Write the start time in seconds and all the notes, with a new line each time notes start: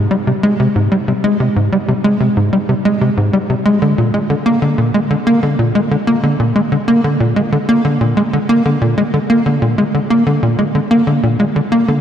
0.11 G3
0.27 C3
0.43 G#3
0.60 C3
0.76 G#2
0.92 G3
1.08 C3
1.24 G#3
1.40 C3
1.56 G#2
1.72 G3
1.88 C3
2.04 G#3
2.20 C3
2.37 G#2
2.53 G3
2.69 C3
2.85 G#3
3.01 C3
3.17 G#2
3.33 G3
3.50 C3
3.65 G#3
3.82 D3
3.98 A#2
4.14 G#3
4.30 D3
4.46 A#3
4.62 D3
4.78 A#2
4.94 G#3
5.10 D3
5.27 A#3
5.43 D3
5.59 A#2
5.75 G#3
5.91 D3
6.07 A#3
6.23 D3
6.40 A#2
6.56 G#3
6.72 D3
6.88 A#3
7.04 D3
7.20 A#2
7.36 G#3
7.52 D3
7.69 A#3
7.85 D3
8.01 A#2
8.17 G#3
8.33 D3
8.49 A#3
8.65 D3
8.81 A#2
8.98 G#3
9.14 D3
9.30 A#3
9.46 D3
9.62 A#2
9.78 G#3
9.94 D3
10.10 A#3
10.27 D3
10.43 A#2
10.59 G#3
10.75 D3
10.91 A#3
11.07 D3
11.23 A#2
11.40 G#3
11.56 D3
11.72 A#3
11.88 D3